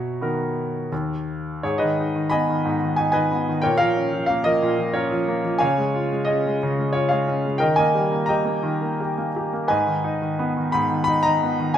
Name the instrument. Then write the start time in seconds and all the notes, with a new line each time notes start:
grand piano
Already playing: B2 C#5 E5 A#5
0.21 D#3 B3 A#4
0.92 D#2
1.63 G#2 G#4 C#5
1.78 G#4 B4 D#5
1.82 D#3
2.00 D#4
2.16 D#3
2.30 B3 D#5 G#5 B5
2.50 D#3
2.65 G#2
2.82 D#3
2.96 D#4 G#5
3.12 D#3 B4 D#5 G#5
3.32 B3
3.49 D#3
3.62 A#2 A#4 C#5 G5
3.78 F3 A#4 C#5 F5
3.97 C#4
4.13 F3
4.26 A#3 F5
4.44 F3 A#4 D#5
4.62 A#2
4.79 F3
4.94 C#4 F4 A#4 C#5
5.11 F3
5.28 A#3
5.45 F3
5.58 C#3 C#5 F5 G#5
5.78 G#3
5.95 F4
6.12 G#3
6.25 G#4 D#5
6.29 C#4
6.47 G#3
6.63 C#3
6.79 G#3
6.93 F4 C#5
7.09 G#3 G#4 C#5 F5
7.28 C#4
7.46 G#3
7.58 A#4 D#5 G5
7.62 D#3
7.76 A#3 D#5 G#5
7.95 G3
8.12 A#3
8.26 G4 D#5 G5 A#5
8.45 A#3
8.63 D#3
8.81 A#3
9.00 G4
9.18 A#3
9.36 G4
9.53 A#3
9.68 G#2 B4 D#5 G#5
9.87 D#3
10.04 D#4
10.22 D#3
10.39 B3
10.57 D#3
10.72 G#2 B5
10.91 D#3
11.04 D#4 B5
11.23 D#3 D#5 A#5
11.43 B3
11.60 D#3
11.74 G#5